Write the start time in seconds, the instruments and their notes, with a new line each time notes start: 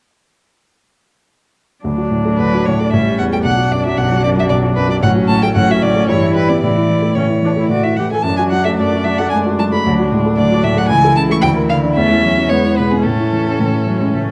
1.84 grand piano D2, cello F#3, viola D4
1.98 grand piano F#4
2.11 grand piano A2
2.25 grand piano A3
2.38 grand piano D2, violin B4
2.54 grand piano F#4
2.66 grand piano A2, violin C#5
2.79 grand piano A3, violin D5
2.92 grand piano A1, cello G3, viola C#4, violin E5
3.07 grand piano G4
3.19 grand piano E2, violin F#5
3.33 grand piano A3, violin G5
3.44 grand piano B1, cello F#3, viola D4, violin F#5
3.57 grand piano F#4
3.71 grand piano F#2, violin D5
3.86 grand piano F#3, violin E5
3.97 grand piano B1, violin F#5
4.11 grand piano F#4
4.24 grand piano F#2, violin D5
4.37 grand piano F#3, violin E5
4.49 grand piano B1, violin D5
4.63 grand piano F#4
4.76 grand piano F#2, violin B4
4.88 grand piano F#3, violin D5
5.03 grand piano A1, cello F#3, viola C#4, violin F#5
5.15 grand piano F#4
5.28 grand piano A2, violin A5
5.43 grand piano A3, violin G5
5.55 grand piano A1, cello F#3, viola C#4, violin F#5
5.69 grand piano F#4, violin E5
5.82 grand piano A2, violin D5
5.96 grand piano A3
6.09 grand piano G2, cello E3, viola E4, violin C#5
6.22 grand piano E4
6.35 grand piano G3, violin B4
6.49 grand piano B3, violin D5
6.61 grand piano A2, cello E3, viola E4, violin D5
6.77 grand piano E4
6.89 grand piano E3
7.02 grand piano A3
7.15 grand piano A2, cello E3, viola C#4, violin C#5
7.28 grand piano E4
7.43 grand piano E3, viola D4
7.56 grand piano A3, viola E4
7.69 grand piano A2, viola F#4, violin D5
7.84 grand piano E4, violin E5
7.96 grand piano E3, viola G4, violin F#5
8.11 grand piano A3, viola A4, violin G#5
8.22 grand piano F#2, cello F#3, violin A5
8.27 viola D4
8.37 grand piano F#4, violin G#5
8.51 grand piano F#3, violin F#5
8.65 grand piano A3, violin E5
8.79 grand piano F#2, cello A3, violin D5
8.92 grand piano F#4
9.04 grand piano F#3, violin E5
9.18 grand piano A3, violin F#5
9.30 grand piano F#2, cello G#3, violin G#5
9.46 grand piano F#4
9.59 grand piano F#3, violin A5
9.72 grand piano A3, violin B5
9.85 grand piano D2, cello F#3, viola D4
9.99 grand piano F#4
10.11 grand piano A2, cello G#3
10.26 grand piano A3
10.36 grand piano D2, cello F#3, violin D5
10.52 grand piano F#4
10.64 grand piano A2, violin E5
10.77 grand piano A3, violin F#5
10.88 grand piano C#2, cello E3, viola E4, violin G#5
11.04 grand piano A4
11.16 grand piano C#3, violin A5
11.30 grand piano A3, violin C#6
11.42 grand piano D2, violin G5
11.56 grand piano A#4
11.69 grand piano D3, violin F5
11.83 grand piano D4
11.95 grand piano E2, cello A3, viola C#4, violin E5
12.11 grand piano E4
12.22 grand piano E3, cello F#3
12.37 grand piano C#4
12.49 grand piano E2, cello G#3, viola B3, violin C#5
12.65 grand piano E4
12.77 grand piano B2, violin B4
12.90 grand piano B3, violin G#4
13.03 grand piano A2, cello A3, viola C#4, violin A4
13.19 grand piano E4
13.33 grand piano E3
13.47 grand piano C#4
13.60 grand piano A2, cello E3
13.73 grand piano E4
13.87 grand piano E3, cello F#3
14.01 cello G#3, grand piano C#4
14.15 grand piano A2, cello A3